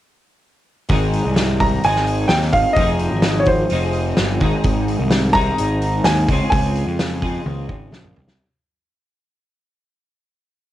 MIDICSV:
0, 0, Header, 1, 5, 480
1, 0, Start_track
1, 0, Key_signature, -4, "major"
1, 0, Tempo, 468750
1, 934, Time_signature, 4, 2, 24, 8
1, 10985, End_track
2, 0, Start_track
2, 0, Title_t, "Upright piano"
2, 0, Program_c, 0, 0
2, 1642, Note_on_c, 0, 82, 80
2, 1890, Note_on_c, 0, 80, 94
2, 1895, Note_off_c, 0, 82, 0
2, 2332, Note_on_c, 0, 79, 80
2, 2386, Note_off_c, 0, 80, 0
2, 2391, Note_off_c, 0, 79, 0
2, 2587, Note_on_c, 0, 77, 77
2, 2797, Note_on_c, 0, 75, 75
2, 2847, Note_off_c, 0, 77, 0
2, 3479, Note_on_c, 0, 73, 57
2, 3493, Note_off_c, 0, 75, 0
2, 3554, Note_on_c, 0, 72, 70
2, 3561, Note_off_c, 0, 73, 0
2, 4479, Note_off_c, 0, 72, 0
2, 5459, Note_on_c, 0, 82, 107
2, 6150, Note_off_c, 0, 82, 0
2, 6196, Note_on_c, 0, 80, 83
2, 6641, Note_off_c, 0, 80, 0
2, 6656, Note_on_c, 0, 80, 73
2, 8070, Note_off_c, 0, 80, 0
2, 10985, End_track
3, 0, Start_track
3, 0, Title_t, "Clean electric guitar"
3, 0, Program_c, 1, 27
3, 920, Note_on_c, 1, 44, 82
3, 926, Note_on_c, 1, 51, 75
3, 928, Note_on_c, 1, 56, 85
3, 936, Note_on_c, 1, 60, 89
3, 939, Note_on_c, 1, 63, 91
3, 945, Note_on_c, 1, 68, 80
3, 1873, Note_off_c, 1, 44, 0
3, 1876, Note_off_c, 1, 51, 0
3, 1883, Note_on_c, 1, 44, 72
3, 1895, Note_on_c, 1, 51, 64
3, 1897, Note_off_c, 1, 56, 0
3, 1898, Note_off_c, 1, 60, 0
3, 1901, Note_on_c, 1, 56, 64
3, 1902, Note_off_c, 1, 63, 0
3, 1902, Note_on_c, 1, 60, 69
3, 1907, Note_on_c, 1, 63, 70
3, 1911, Note_off_c, 1, 68, 0
3, 1915, Note_on_c, 1, 68, 74
3, 2833, Note_off_c, 1, 44, 0
3, 2839, Note_off_c, 1, 51, 0
3, 2844, Note_off_c, 1, 56, 0
3, 2848, Note_on_c, 1, 53, 80
3, 2854, Note_off_c, 1, 60, 0
3, 2858, Note_on_c, 1, 60, 83
3, 2862, Note_off_c, 1, 63, 0
3, 2866, Note_on_c, 1, 63, 86
3, 2872, Note_off_c, 1, 68, 0
3, 2876, Note_on_c, 1, 68, 90
3, 3785, Note_off_c, 1, 53, 0
3, 3798, Note_on_c, 1, 53, 69
3, 3803, Note_off_c, 1, 63, 0
3, 3809, Note_off_c, 1, 60, 0
3, 3813, Note_on_c, 1, 60, 67
3, 3814, Note_on_c, 1, 63, 77
3, 3820, Note_off_c, 1, 68, 0
3, 3824, Note_on_c, 1, 68, 71
3, 4508, Note_off_c, 1, 53, 0
3, 4516, Note_off_c, 1, 63, 0
3, 4518, Note_on_c, 1, 44, 71
3, 4519, Note_on_c, 1, 51, 81
3, 4526, Note_off_c, 1, 60, 0
3, 4530, Note_on_c, 1, 60, 90
3, 4532, Note_on_c, 1, 56, 80
3, 4537, Note_off_c, 1, 68, 0
3, 4537, Note_on_c, 1, 63, 93
3, 4541, Note_on_c, 1, 68, 90
3, 5466, Note_off_c, 1, 44, 0
3, 5467, Note_off_c, 1, 51, 0
3, 5476, Note_off_c, 1, 63, 0
3, 5480, Note_off_c, 1, 68, 0
3, 5484, Note_on_c, 1, 68, 76
3, 5494, Note_off_c, 1, 60, 0
3, 5494, Note_on_c, 1, 63, 79
3, 5498, Note_on_c, 1, 60, 70
3, 5501, Note_off_c, 1, 56, 0
3, 5505, Note_on_c, 1, 56, 67
3, 5510, Note_on_c, 1, 51, 67
3, 5513, Note_on_c, 1, 44, 65
3, 6434, Note_off_c, 1, 63, 0
3, 6442, Note_off_c, 1, 51, 0
3, 6443, Note_off_c, 1, 44, 0
3, 6452, Note_on_c, 1, 49, 82
3, 6455, Note_off_c, 1, 56, 0
3, 6459, Note_on_c, 1, 56, 76
3, 6463, Note_off_c, 1, 60, 0
3, 6467, Note_on_c, 1, 60, 81
3, 6474, Note_off_c, 1, 68, 0
3, 6475, Note_on_c, 1, 65, 88
3, 6478, Note_on_c, 1, 68, 85
3, 7388, Note_off_c, 1, 68, 0
3, 7393, Note_off_c, 1, 49, 0
3, 7397, Note_off_c, 1, 56, 0
3, 7398, Note_off_c, 1, 65, 0
3, 7401, Note_off_c, 1, 60, 0
3, 7401, Note_on_c, 1, 68, 80
3, 7411, Note_on_c, 1, 65, 66
3, 7417, Note_on_c, 1, 60, 69
3, 7425, Note_on_c, 1, 56, 60
3, 7431, Note_on_c, 1, 49, 59
3, 8349, Note_off_c, 1, 68, 0
3, 8354, Note_off_c, 1, 65, 0
3, 8357, Note_off_c, 1, 60, 0
3, 8361, Note_off_c, 1, 56, 0
3, 8364, Note_off_c, 1, 49, 0
3, 10985, End_track
4, 0, Start_track
4, 0, Title_t, "Picked electric bass"
4, 0, Program_c, 2, 34
4, 915, Note_on_c, 2, 32, 91
4, 1232, Note_off_c, 2, 32, 0
4, 1284, Note_on_c, 2, 36, 66
4, 1802, Note_off_c, 2, 36, 0
4, 1886, Note_on_c, 2, 32, 74
4, 2301, Note_off_c, 2, 32, 0
4, 2360, Note_on_c, 2, 39, 77
4, 2571, Note_off_c, 2, 39, 0
4, 2595, Note_on_c, 2, 32, 79
4, 2706, Note_off_c, 2, 32, 0
4, 2828, Note_on_c, 2, 29, 86
4, 3147, Note_off_c, 2, 29, 0
4, 3194, Note_on_c, 2, 32, 69
4, 3715, Note_off_c, 2, 32, 0
4, 3807, Note_on_c, 2, 29, 75
4, 4219, Note_off_c, 2, 29, 0
4, 4294, Note_on_c, 2, 31, 86
4, 4497, Note_off_c, 2, 31, 0
4, 4516, Note_on_c, 2, 32, 76
4, 4624, Note_off_c, 2, 32, 0
4, 4753, Note_on_c, 2, 32, 93
4, 5067, Note_off_c, 2, 32, 0
4, 5115, Note_on_c, 2, 36, 72
4, 5633, Note_off_c, 2, 36, 0
4, 5730, Note_on_c, 2, 32, 79
4, 6139, Note_off_c, 2, 32, 0
4, 6196, Note_on_c, 2, 39, 84
4, 6405, Note_off_c, 2, 39, 0
4, 6437, Note_on_c, 2, 37, 81
4, 6543, Note_off_c, 2, 37, 0
4, 6673, Note_on_c, 2, 37, 90
4, 6986, Note_off_c, 2, 37, 0
4, 7031, Note_on_c, 2, 41, 67
4, 7551, Note_off_c, 2, 41, 0
4, 7638, Note_on_c, 2, 37, 73
4, 7846, Note_off_c, 2, 37, 0
4, 7876, Note_on_c, 2, 32, 69
4, 8096, Note_off_c, 2, 32, 0
4, 8101, Note_on_c, 2, 34, 75
4, 8328, Note_off_c, 2, 34, 0
4, 8362, Note_on_c, 2, 36, 73
4, 8580, Note_off_c, 2, 36, 0
4, 10985, End_track
5, 0, Start_track
5, 0, Title_t, "Drums"
5, 909, Note_on_c, 9, 46, 60
5, 920, Note_on_c, 9, 36, 98
5, 1011, Note_off_c, 9, 46, 0
5, 1022, Note_off_c, 9, 36, 0
5, 1161, Note_on_c, 9, 46, 44
5, 1264, Note_off_c, 9, 46, 0
5, 1394, Note_on_c, 9, 38, 96
5, 1394, Note_on_c, 9, 46, 61
5, 1497, Note_off_c, 9, 38, 0
5, 1497, Note_off_c, 9, 46, 0
5, 1636, Note_on_c, 9, 46, 45
5, 1639, Note_on_c, 9, 36, 77
5, 1738, Note_off_c, 9, 46, 0
5, 1742, Note_off_c, 9, 36, 0
5, 1878, Note_on_c, 9, 46, 63
5, 1980, Note_off_c, 9, 46, 0
5, 2000, Note_on_c, 9, 38, 27
5, 2102, Note_off_c, 9, 38, 0
5, 2117, Note_on_c, 9, 46, 48
5, 2220, Note_off_c, 9, 46, 0
5, 2342, Note_on_c, 9, 38, 98
5, 2342, Note_on_c, 9, 46, 65
5, 2445, Note_off_c, 9, 38, 0
5, 2445, Note_off_c, 9, 46, 0
5, 2469, Note_on_c, 9, 38, 28
5, 2572, Note_off_c, 9, 38, 0
5, 2585, Note_on_c, 9, 46, 48
5, 2592, Note_on_c, 9, 36, 74
5, 2688, Note_off_c, 9, 46, 0
5, 2694, Note_off_c, 9, 36, 0
5, 2826, Note_on_c, 9, 46, 60
5, 2832, Note_on_c, 9, 36, 99
5, 2928, Note_off_c, 9, 46, 0
5, 2934, Note_off_c, 9, 36, 0
5, 3063, Note_on_c, 9, 46, 44
5, 3166, Note_off_c, 9, 46, 0
5, 3299, Note_on_c, 9, 38, 92
5, 3299, Note_on_c, 9, 46, 59
5, 3402, Note_off_c, 9, 38, 0
5, 3402, Note_off_c, 9, 46, 0
5, 3537, Note_on_c, 9, 46, 41
5, 3549, Note_on_c, 9, 36, 74
5, 3639, Note_off_c, 9, 46, 0
5, 3651, Note_off_c, 9, 36, 0
5, 3784, Note_on_c, 9, 46, 57
5, 3886, Note_off_c, 9, 46, 0
5, 4022, Note_on_c, 9, 46, 42
5, 4124, Note_off_c, 9, 46, 0
5, 4267, Note_on_c, 9, 38, 98
5, 4267, Note_on_c, 9, 46, 57
5, 4370, Note_off_c, 9, 38, 0
5, 4370, Note_off_c, 9, 46, 0
5, 4507, Note_on_c, 9, 46, 42
5, 4516, Note_on_c, 9, 36, 75
5, 4610, Note_off_c, 9, 46, 0
5, 4618, Note_off_c, 9, 36, 0
5, 4748, Note_on_c, 9, 46, 56
5, 4756, Note_on_c, 9, 36, 99
5, 4850, Note_off_c, 9, 46, 0
5, 4858, Note_off_c, 9, 36, 0
5, 4997, Note_on_c, 9, 46, 39
5, 5100, Note_off_c, 9, 46, 0
5, 5228, Note_on_c, 9, 38, 104
5, 5228, Note_on_c, 9, 46, 61
5, 5330, Note_off_c, 9, 38, 0
5, 5330, Note_off_c, 9, 46, 0
5, 5476, Note_on_c, 9, 46, 47
5, 5479, Note_on_c, 9, 36, 74
5, 5578, Note_off_c, 9, 46, 0
5, 5582, Note_off_c, 9, 36, 0
5, 5716, Note_on_c, 9, 46, 58
5, 5818, Note_off_c, 9, 46, 0
5, 5956, Note_on_c, 9, 46, 45
5, 6058, Note_off_c, 9, 46, 0
5, 6188, Note_on_c, 9, 38, 105
5, 6188, Note_on_c, 9, 46, 66
5, 6291, Note_off_c, 9, 38, 0
5, 6291, Note_off_c, 9, 46, 0
5, 6437, Note_on_c, 9, 36, 74
5, 6439, Note_on_c, 9, 46, 47
5, 6539, Note_off_c, 9, 36, 0
5, 6542, Note_off_c, 9, 46, 0
5, 6678, Note_on_c, 9, 36, 98
5, 6686, Note_on_c, 9, 46, 63
5, 6780, Note_off_c, 9, 36, 0
5, 6789, Note_off_c, 9, 46, 0
5, 6916, Note_on_c, 9, 46, 44
5, 7019, Note_off_c, 9, 46, 0
5, 7161, Note_on_c, 9, 38, 100
5, 7161, Note_on_c, 9, 46, 63
5, 7263, Note_off_c, 9, 38, 0
5, 7263, Note_off_c, 9, 46, 0
5, 7396, Note_on_c, 9, 36, 75
5, 7396, Note_on_c, 9, 46, 42
5, 7498, Note_off_c, 9, 46, 0
5, 7499, Note_off_c, 9, 36, 0
5, 7639, Note_on_c, 9, 48, 50
5, 7741, Note_off_c, 9, 48, 0
5, 7876, Note_on_c, 9, 36, 56
5, 7979, Note_off_c, 9, 36, 0
5, 8115, Note_on_c, 9, 38, 71
5, 8217, Note_off_c, 9, 38, 0
5, 8236, Note_on_c, 9, 45, 63
5, 8339, Note_off_c, 9, 45, 0
5, 8359, Note_on_c, 9, 43, 72
5, 8462, Note_off_c, 9, 43, 0
5, 8475, Note_on_c, 9, 38, 71
5, 8577, Note_off_c, 9, 38, 0
5, 10985, End_track
0, 0, End_of_file